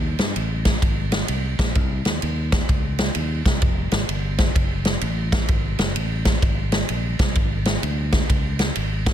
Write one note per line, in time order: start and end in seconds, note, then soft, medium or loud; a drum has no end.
0.00 0.15 D#2 loud
0.19 0.33 G2 medium
0.19 snare loud
0.19 ride bell medium
0.36 0.75 A1 medium
0.36 ride bell medium
0.65 kick medium
0.65 snare loud
0.65 ride bell medium
0.82 1.22 G#1 medium
0.82 kick loud
0.82 ride bell medium
1.12 snare loud
1.12 ride bell medium
1.28 1.54 C2 medium
1.28 ride bell medium
1.59 1.73 A#1 medium
1.59 kick loud
1.59 snare loud
1.59 ride bell medium
1.75 2.01 C2 loud
1.75 kick loud
1.75 ride bell medium
2.05 2.20 D#2 medium
2.05 snare medium
2.05 ride bell medium
2.22 2.62 D#2 loud
2.22 ride bell medium
2.52 kick loud
2.52 snare loud
2.52 ride bell medium
2.69 3.09 C#2 loud
2.69 kick loud
2.69 ride bell medium
2.98 snare loud
2.98 ride bell medium
3.15 3.41 D#2 loud
3.15 ride bell medium
3.46 kick loud
3.46 snare loud
3.46 ride bell medium
3.62 3.88 F1 loud
3.62 kick loud
3.62 ride bell medium
3.91 4.06 G#1 loud
3.91 snare loud
3.91 ride bell medium
4.09 4.48 G1 medium
4.09 ride bell medium
4.38 kick loud
4.38 snare loud
4.38 ride bell medium
4.56 4.95 F#1 loud
4.56 kick loud
4.56 ride bell medium
4.85 snare loud
4.85 ride bell medium
5.01 5.42 A1 loud
5.01 ride bell medium
5.32 kick loud
5.32 snare loud
5.32 ride bell medium
5.48 5.75 G#1 loud
5.48 kick loud
5.48 ride bell medium
5.79 5.93 F#1 loud
5.79 snare loud
5.79 ride bell medium
5.96 6.35 A1 medium
5.96 ride bell medium
6.25 kick medium
6.25 snare loud
6.25 ride bell medium
6.42 6.82 G#1 loud
6.42 kick loud
6.42 ride bell medium
6.72 snare loud
6.72 ride bell medium
6.89 7.15 A#1 medium
6.89 ride bell medium
7.19 7.34 C2 medium
7.19 kick loud
7.19 snare loud
7.19 ride bell medium
7.35 7.76 G#1 loud
7.35 kick loud
7.35 ride bell medium
7.65 snare loud
7.65 ride bell medium
7.83 8.23 D2 medium
7.83 ride bell medium
8.12 kick loud
8.12 snare loud
8.12 ride bell medium
8.30 8.70 C#2 loud
8.30 kick loud
8.30 ride bell medium
8.59 snare loud
8.59 ride bell medium
8.75 9.13 G#1 medium
8.75 ride bell medium
9.06 kick loud
9.06 snare loud
9.06 ride bell medium